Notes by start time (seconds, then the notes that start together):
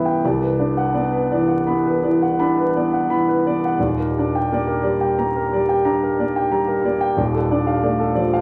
Already playing: C2 E3 B3 B4 E5 G5 B5
0.05 G5
0.25 C2 D5
0.40 B4
0.59 D4 D5
0.77 F#5
0.94 B3 D5
1.12 B4
1.32 E3 D5
1.48 F#5
1.67 B3 B5
1.86 B4
2.03 E3 D5
2.22 F#5
2.39 D4 B5
2.57 B4
2.76 B3 D5
2.93 F#5
3.09 E3 B5
3.29 B4
3.47 B3 D5
3.65 F#5
3.79 D#1 D#2 D5
3.99 A#4
4.18 D4 D5
4.35 G5
4.52 A#3 D5
4.67 A#4
4.83 G3 D5
5.01 G5
5.18 A#3 A#5
5.36 A#4
5.53 G3 D5
5.69 G5
5.85 D4 A#5
6.03 A#4
6.19 A#3 D5
6.36 G5
6.51 G3 A#5
6.67 A#4
6.85 A#3 D5
7.01 G5
7.17 D#1 D#2 D5
7.34 A4
7.51 D4 D5
7.67 F5
7.83 A3 D5
8.00 A4
8.15 F3 D5
8.34 F5